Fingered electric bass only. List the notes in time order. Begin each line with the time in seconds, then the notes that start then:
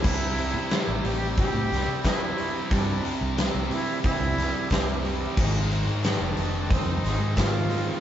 0.04 C2
0.54 C3
0.87 A1
1.04 A1
1.54 A2
1.71 C2
1.88 C3
2.71 G2
3.21 C2
3.54 C2
3.70 C3
4.20 C2
4.37 C2
4.71 C2
5.37 G#1
5.86 G#2
6.20 F1
6.36 F1
6.86 F2
7.03 G#1
7.19 G#2